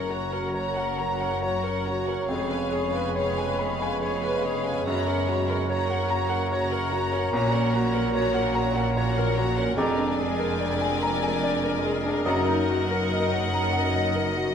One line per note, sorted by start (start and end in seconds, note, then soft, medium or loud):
0.00 2.26 F#1 medium
0.00 2.26 F#2 medium
0.00 4.83 C#3 medium
0.00 2.26 F#3 medium
0.00 2.31 F#3 medium
0.00 2.25 A#3 medium
0.00 0.24 C#4 soft
0.00 4.82 C#4 medium
0.00 0.10 A#4 soft
0.00 0.11 A#4 soft
0.00 4.82 C#5 soft
0.00 0.11 F#5 soft
0.00 2.25 A#5 medium
0.10 0.46 F#4 soft
0.10 0.33 F#4 soft
0.10 0.33 C#5 soft
0.10 0.33 A#5 soft
0.32 0.55 A#4 soft
0.32 0.68 A#4 soft
0.32 0.55 A#4 soft
0.32 0.55 F#5 soft
0.54 0.76 F#4 soft
0.54 0.90 C#5 medium
0.54 0.76 C#5 soft
0.54 0.75 A#5 soft
0.76 1.00 A#4 soft
0.76 0.99 F#5 soft
0.76 1.12 F#5 medium
0.98 1.22 F#4 soft
0.98 1.22 C#5 soft
0.98 1.34 A#5 medium
0.98 1.21 A#5 soft
1.20 1.44 A#4 soft
1.20 1.43 F#5 soft
1.20 1.56 F#5 medium
1.42 1.64 F#4 soft
1.42 1.78 C#5 medium
1.42 1.64 C#5 soft
1.42 1.63 A#5 soft
1.63 1.99 A#4 soft
1.63 1.87 A#4 soft
1.63 1.86 F#5 soft
1.85 2.08 F#4 soft
1.85 2.21 F#4 soft
1.85 2.08 C#5 soft
1.85 2.07 A#5 soft
2.06 2.29 C#4 soft
2.06 2.30 A#4 soft
2.06 2.29 F#5 soft
2.27 4.82 F1 medium
2.27 4.82 F2 medium
2.27 5.71 G#3 medium
2.27 5.65 G#3 medium
2.27 5.65 B3 medium
2.27 2.50 G#4 medium
2.27 2.50 C#5 medium
2.27 2.48 F5 medium
2.27 5.71 B5 medium
2.49 2.85 C#4 soft
2.49 2.73 B4 soft
2.49 2.72 F5 soft
2.49 2.72 G#5 soft
2.72 3.07 G#4 medium
2.72 2.95 G#4 medium
2.72 2.94 C#5 soft
2.72 2.94 F5 soft
2.93 3.28 B4 medium
2.93 3.16 B4 soft
2.93 3.15 F5 soft
2.93 3.16 G#5 soft
3.15 3.36 G#4 medium
3.15 3.35 C#5 medium
3.15 3.50 C#5 medium
3.15 3.37 F5 medium
3.37 3.59 B4 medium
3.37 3.59 F5 soft
3.37 3.72 G#5 medium
3.37 3.59 G#5 soft
3.59 3.81 G#4 medium
3.59 3.80 C#5 soft
3.59 3.81 F5 soft
3.59 3.93 B5 medium
3.80 4.02 B4 soft
3.80 4.02 F5 medium
3.80 4.15 G#5 medium
3.80 4.03 G#5 soft
4.02 4.22 G#4 medium
4.02 4.22 C#5 medium
4.02 4.36 C#5 medium
4.02 4.22 F5 soft
4.22 4.44 B4 soft
4.22 4.57 B4 medium
4.22 4.44 F5 medium
4.22 4.44 G#5 medium
4.43 4.65 G#4 medium
4.43 4.79 G#4 medium
4.43 4.66 C#5 soft
4.43 4.65 F5 medium
4.65 4.87 C#4 medium
4.65 4.86 B4 soft
4.65 4.86 F5 soft
4.65 4.86 G#5 medium
4.86 7.34 F#1 medium
4.86 7.34 F#2 medium
4.86 7.30 F#2 medium
4.86 7.15 C#3 medium
4.86 9.60 C#4 medium
4.86 5.06 F#4 medium
4.86 9.60 C#5 medium
4.86 5.06 C#5 medium
4.86 5.06 A#5 medium
5.07 5.41 C#4 medium
5.07 5.28 A#4 medium
5.07 5.28 F#5 medium
5.28 5.49 F#4 medium
5.28 5.61 F#4 medium
5.28 5.49 C#5 medium
5.28 5.48 A#5 medium
5.47 5.68 A#4 medium
5.47 5.70 A#4 medium
5.47 5.82 A#4 medium
5.47 5.69 F#5 soft
5.67 9.60 F#3 medium
5.67 9.78 F#3 medium
5.67 9.60 A#3 medium
5.67 5.87 F#4 medium
5.67 5.88 C#5 medium
5.67 6.02 C#5 medium
5.67 9.47 A#5 medium
5.67 5.88 A#5 medium
5.89 6.09 A#4 medium
5.89 6.23 F#5 medium
5.89 6.10 F#5 medium
6.09 6.30 F#4 medium
6.09 6.31 C#5 medium
6.09 6.30 A#5 medium
6.09 6.43 A#5 medium
6.29 6.50 A#4 medium
6.29 6.51 A#4 medium
6.29 6.63 F#5 medium
6.29 6.51 F#5 medium
6.50 6.70 F#4 medium
6.50 6.71 C#5 medium
6.50 6.85 C#5 medium
6.50 6.71 A#5 medium
6.71 6.93 A#4 medium
6.71 7.05 A#4 medium
6.71 6.93 A#4 medium
6.71 6.92 F#5 medium
6.92 7.13 F#4 medium
6.92 7.26 F#4 medium
6.92 7.13 C#5 medium
6.92 7.13 A#5 medium
7.12 7.33 C#4 medium
7.12 7.34 A#4 medium
7.12 7.34 F#5 medium
7.32 9.74 A#1 medium
7.32 9.73 A#2 medium
7.32 9.74 A#2 medium
7.32 7.52 F#4 medium
7.32 7.53 C#5 medium
7.32 7.53 A#5 medium
7.53 7.86 C#4 medium
7.53 7.74 A#4 medium
7.53 7.74 F#5 medium
7.73 8.07 F#4 medium
7.73 7.95 F#4 medium
7.73 7.94 C#5 medium
7.73 7.94 A#5 medium
7.92 8.14 A#4 medium
7.92 8.27 A#4 medium
7.92 8.15 A#4 medium
7.92 8.14 F#5 medium
8.14 8.34 F#4 medium
8.14 8.33 C#5 medium
8.14 8.48 C#5 medium
8.14 8.33 A#5 medium
8.34 8.55 A#4 medium
8.34 8.55 F#5 medium
8.34 8.68 F#5 medium
8.55 8.76 F#4 medium
8.55 8.76 C#5 medium
8.55 8.76 A#5 medium
8.55 8.88 A#5 medium
8.75 8.96 A#4 medium
8.75 8.97 A#4 medium
8.75 8.96 F#5 medium
8.75 9.09 F#5 medium
8.94 9.15 F#4 medium
8.94 9.29 C#5 medium
8.94 9.16 C#5 medium
8.94 9.14 A#5 medium
9.15 9.37 A#4 medium
9.15 9.50 A#4 medium
9.15 9.36 F#5 medium
9.35 9.57 F#4 medium
9.35 9.70 F#4 medium
9.35 9.57 C#5 medium
9.35 9.57 A#5 medium
9.57 9.78 C#4 medium
9.57 9.78 A#4 medium
9.57 9.77 A#4 medium
9.57 9.77 F#5 medium
9.76 12.22 F1 medium
9.76 12.26 F2 medium
9.76 12.22 F2 medium
9.76 12.26 G#3 medium
9.76 10.08 G#3 medium
9.76 14.55 A#3 medium
9.76 12.22 D4 medium
9.76 14.55 A#4 medium
9.76 12.22 D5 medium
9.76 10.08 D5 medium
9.76 12.22 G#5 medium
9.76 10.16 A#5 medium
9.98 10.31 D4 medium
10.19 10.52 G#4 medium
10.39 10.73 A#4 medium
10.60 10.93 D5 medium
10.81 11.14 G#5 medium
11.03 11.35 A#5 medium
11.23 11.56 G#5 medium
11.43 11.76 D5 medium
11.64 11.97 A#4 medium
11.86 12.19 G#4 medium
12.06 12.27 D4 medium
12.25 14.55 F#1 medium
12.25 14.55 F#2 medium
12.25 14.55 F#3 medium
12.25 12.58 F#3 medium
12.25 14.55 D#4 medium
12.25 12.57 D#5 medium
12.25 14.55 D#5 medium
12.25 14.55 F#5 medium
12.25 12.66 A#5 medium
12.49 12.83 D#4 medium
12.69 13.04 F#4 medium
12.91 13.25 A#4 medium
13.12 13.46 D#5 medium
13.34 13.67 F#5 medium
13.54 13.88 A#5 medium
13.73 14.08 F#5 medium
13.94 14.29 D#5 medium
14.15 14.50 A#4 medium
14.37 14.55 F#4 medium